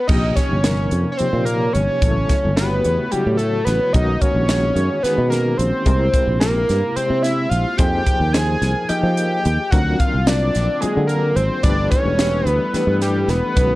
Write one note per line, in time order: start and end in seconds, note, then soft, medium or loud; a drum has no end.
0.08 0.33 A#1 medium
0.08 0.58 C3 medium
0.08 0.58 F3 medium
0.08 2.00 A#3 medium
0.08 0.58 A#3 medium
0.08 0.58 D#4 medium
0.08 0.58 G4 medium
0.08 3.90 C#5 medium
0.08 0.37 D#5 medium
0.08 kick loud
0.08 crash medium
0.36 1.11 C#5 medium
0.36 kick medium
0.36 snare soft
0.36 closed hi-hat medium
0.51 0.87 G1 medium
0.64 1.13 C3 medium
0.64 1.13 F3 medium
0.64 1.13 A#3 medium
0.64 1.13 D#4 medium
0.64 1.14 A#4 medium
0.64 snare loud
0.64 closed hi-hat medium
0.91 1.04 F2 medium
0.91 closed hi-hat medium
1.12 1.19 C#5 medium
1.17 2.03 C3 medium
1.17 2.02 F3 medium
1.17 2.02 A#3 medium
1.17 2.03 D#4 medium
1.17 2.03 G4 medium
1.17 1.45 C5 medium
1.17 muted fretless electric bass stroke soft
1.17 closed hi-hat medium
1.33 1.69 A#2 medium
1.45 1.75 A#4 medium
1.45 closed hi-hat medium
1.73 1.87 G1 medium
1.73 2.56 C#5 loud
1.73 closed hi-hat medium
2.02 2.25 A1 medium
2.02 2.50 C#3 medium
2.02 2.50 F#3 medium
2.02 3.93 A3 medium
2.02 2.51 B3 medium
2.02 2.50 E4 medium
2.02 2.51 A4 medium
2.02 kick loud
2.02 closed hi-hat medium
2.29 kick medium
2.29 snare soft
2.29 closed hi-hat medium
2.45 2.80 G1 medium
2.56 3.06 C#3 medium
2.56 3.05 B3 medium
2.56 3.05 E4 medium
2.56 3.05 F#4 medium
2.56 3.06 G4 medium
2.56 3.13 B4 medium
2.56 snare loud
2.56 closed hi-hat medium
2.84 2.97 E2 medium
2.84 closed hi-hat medium
3.11 3.95 C#3 medium
3.11 3.95 F#3 medium
3.11 3.95 B3 medium
3.11 3.95 E4 medium
3.11 3.94 F#4 medium
3.11 3.37 G4 medium
3.11 muted fretless electric bass stroke soft
3.11 closed hi-hat medium
3.26 3.62 A2 medium
3.37 3.66 A4 medium
3.37 closed hi-hat medium
3.65 3.79 A1 medium
3.65 3.94 B4 medium
3.65 snare soft
3.65 closed hi-hat medium
3.93 4.18 B1 medium
3.93 4.42 D#3 medium
3.93 4.43 G#3 medium
3.93 7.74 A#3 medium
3.93 5.84 B3 medium
3.93 4.42 C#4 medium
3.93 5.84 D#4 medium
3.93 4.43 F#4 medium
3.93 4.43 A#4 medium
3.93 4.23 D#5 medium
3.93 kick medium
3.93 closed hi-hat medium
4.21 5.04 C#5 loud
4.21 muted fretless electric bass stroke soft
4.21 kick medium
4.21 closed hi-hat medium
4.35 4.71 A#1 medium
4.49 4.98 D#3 medium
4.49 4.97 G#3 medium
4.49 4.98 C#4 medium
4.49 4.98 F#4 medium
4.49 4.97 G#4 medium
4.49 snare loud
4.49 closed hi-hat medium
4.76 4.88 F#2 medium
4.76 closed hi-hat medium
5.03 5.87 D#3 medium
5.03 5.85 G#3 medium
5.03 5.87 C#4 medium
5.03 5.87 F#4 medium
5.03 5.87 G#4 medium
5.03 5.29 B4 medium
5.03 muted fretless electric bass stroke soft
5.03 snare soft
5.03 closed hi-hat medium
5.18 5.53 B2 medium
5.30 5.59 A#4 medium
5.30 snare soft
5.30 closed hi-hat medium
5.57 5.71 A#1 medium
5.57 6.39 C5 loud
5.57 closed hi-hat medium
5.86 6.10 C2 medium
5.86 7.77 C3 medium
5.86 6.35 G#3 medium
5.86 6.35 C4 medium
5.86 7.77 E4 medium
5.86 6.35 E4 medium
5.86 6.35 G4 medium
5.86 6.35 A#4 medium
5.86 kick medium
5.86 closed hi-hat medium
6.14 muted fretless electric bass stroke soft
6.14 kick medium
6.14 closed hi-hat medium
6.27 6.63 A#1 medium
6.40 6.90 G#3 medium
6.40 6.90 C4 medium
6.40 6.90 E4 medium
6.40 6.90 G4 medium
6.40 6.97 A#4 medium
6.40 6.90 A#4 medium
6.40 snare loud
6.40 closed hi-hat medium
6.69 6.81 G2 medium
6.69 snare soft
6.69 closed hi-hat medium
6.96 7.79 G#3 medium
6.96 7.79 C4 medium
6.96 7.79 E4 medium
6.96 7.80 G4 medium
6.96 7.24 C5 medium
6.96 7.78 C5 medium
6.96 muted fretless electric bass stroke soft
6.96 closed hi-hat medium
7.10 7.46 C3 medium
7.22 7.51 E5 loud
7.22 snare soft
7.22 closed hi-hat medium
7.49 7.63 A#1 medium
7.49 7.79 F5 medium
7.49 closed hi-hat medium
7.77 8.03 F2 medium
7.77 8.27 F3 medium
7.77 9.70 F3 medium
7.77 8.27 A#3 medium
7.77 8.27 D#4 medium
7.77 9.70 D#4 medium
7.77 8.27 G#4 medium
7.77 9.70 A#4 medium
7.77 8.27 C5 medium
7.77 8.34 G5 loud
7.77 kick loud
7.77 closed hi-hat medium
8.06 muted fretless electric bass stroke soft
8.06 kick medium
8.06 closed hi-hat medium
8.20 8.56 D#2 medium
8.33 8.83 F3 medium
8.33 8.83 A#3 medium
8.33 8.83 D#4 medium
8.33 8.83 G#4 medium
8.33 8.83 C5 medium
8.33 8.88 G#5 loud
8.33 snare loud
8.33 closed hi-hat medium
8.62 8.73 C2 medium
8.62 snare soft
8.62 closed hi-hat medium
8.89 9.72 F3 medium
8.89 9.71 A#3 medium
8.89 9.72 D#4 medium
8.89 9.72 G#4 medium
8.89 9.72 D#5 medium
8.89 9.72 G5 loud
8.89 muted fretless electric bass stroke soft
8.89 closed hi-hat medium
9.03 9.39 F3 medium
9.17 closed hi-hat medium
9.45 9.57 D#2 medium
9.45 closed hi-hat medium
9.71 9.96 D2 medium
9.71 11.62 D3 medium
9.71 10.20 F#3 medium
9.71 11.62 A#3 medium
9.71 11.62 C4 medium
9.71 10.20 C4 medium
9.71 10.20 D4 medium
9.71 11.63 F4 medium
9.71 10.21 F4 medium
9.71 10.20 A#4 medium
9.71 10.01 F#5 loud
9.71 kick loud
9.71 closed hi-hat medium
9.99 10.29 F5 loud
9.99 muted fretless electric bass stroke soft
9.99 kick medium
9.99 closed hi-hat medium
10.14 10.49 C2 medium
10.27 10.75 F#3 medium
10.27 10.75 C4 medium
10.27 10.75 D4 medium
10.27 10.75 F4 medium
10.27 10.75 A#4 medium
10.27 10.82 D5 loud
10.27 snare loud
10.27 closed hi-hat medium
10.55 10.67 A#1 medium
10.55 snare soft
10.55 closed hi-hat medium
10.81 11.65 F#3 medium
10.81 11.65 C4 medium
10.81 11.63 D4 medium
10.81 11.65 F4 medium
10.81 11.07 G#4 medium
10.81 11.65 G#4 medium
10.81 muted fretless electric bass stroke soft
10.81 closed hi-hat medium
10.97 11.32 D3 medium
11.07 11.37 A#4 medium
11.07 closed hi-hat medium
11.36 11.48 G#1 medium
11.36 11.63 C5 medium
11.36 closed hi-hat medium
11.63 11.88 G1 loud
11.63 12.12 E3 medium
11.63 13.55 G3 medium
11.63 12.12 A3 medium
11.63 12.12 D4 medium
11.63 13.55 E4 medium
11.63 12.12 G4 medium
11.63 13.54 A4 medium
11.63 12.12 B4 medium
11.63 13.55 B4 medium
11.63 11.89 D5 loud
11.63 kick medium
11.63 closed hi-hat medium
11.90 12.47 C#5 loud
11.90 muted fretless electric bass stroke soft
11.90 kick medium
11.90 closed hi-hat medium
12.05 12.41 E1 medium
12.18 12.67 E3 medium
12.18 12.67 A3 medium
12.18 12.67 D4 medium
12.18 12.67 G4 medium
12.18 12.67 B4 medium
12.18 snare loud
12.18 closed hi-hat medium
12.46 12.58 D2 medium
12.46 12.74 B4 loud
12.46 closed hi-hat medium
12.74 13.56 E3 medium
12.74 13.56 A3 medium
12.74 13.57 D4 medium
12.74 13.57 G4 medium
12.74 13.56 B4 medium
12.74 13.01 B4 medium
12.74 muted fretless electric bass stroke soft
12.74 snare soft
12.74 closed hi-hat medium
12.87 13.23 G2 medium
13.02 13.31 G4 medium
13.02 snare soft
13.02 closed hi-hat medium
13.28 13.40 E1 medium
13.28 13.75 B4 loud
13.28 snare soft
13.28 closed hi-hat medium
13.56 13.75 B1 medium
13.56 13.75 D#3 medium
13.56 13.75 G#3 medium
13.56 13.75 B3 medium
13.56 13.75 C#4 medium
13.56 13.75 D#4 medium
13.56 13.75 F#4 medium
13.56 13.75 B4 medium
13.56 kick medium
13.56 closed hi-hat medium